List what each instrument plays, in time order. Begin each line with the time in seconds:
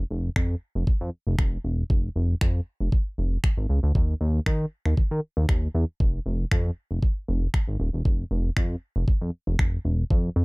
0.11 analog synth bass F1
0.36 analog synth bass F2, finger snap, kick
0.75 analog synth bass F1
0.87 analog synth bass F2, kick
1.01 analog synth bass F2
1.27 analog synth bass F1
1.39 analog synth bass F1, finger snap, kick
1.64 analog synth bass E1
1.90 analog synth bass F1, kick
2.16 analog synth bass F1
2.41 analog synth bass F2, finger snap, kick
2.80 analog synth bass F1
2.92 kick
3.18 analog synth bass F1
3.44 finger snap, kick
3.57 analog synth bass G#1
3.69 analog synth bass C#2
3.83 analog synth bass D2
3.95 analog synth bass D#2, kick
4.21 analog synth bass D#2
4.46 analog synth bass D#3, finger snap, kick
4.85 analog synth bass D#2, finger snap
4.97 analog synth bass D#3, kick
5.11 analog synth bass D#3
5.37 analog synth bass D#2
5.49 analog synth bass D#2, finger snap, kick
5.75 analog synth bass E2
6.00 analog synth bass F1, kick
6.26 analog synth bass F1
6.51 analog synth bass F2, finger snap, kick
6.91 analog synth bass F1
7.03 kick
7.28 analog synth bass F1
7.54 finger snap, kick
7.68 analog synth bass G#1
7.80 analog synth bass D#1
7.93 analog synth bass E1
8.05 analog synth bass F1, kick
8.31 analog synth bass F1
8.57 analog synth bass F2, finger snap, kick
8.96 analog synth bass F1
9.08 analog synth bass F2, kick
9.22 analog synth bass F2
9.47 analog synth bass F1
9.59 analog synth bass F1, finger snap, kick
9.85 analog synth bass E1
10.11 analog synth bass F2, kick
10.36 analog synth bass F2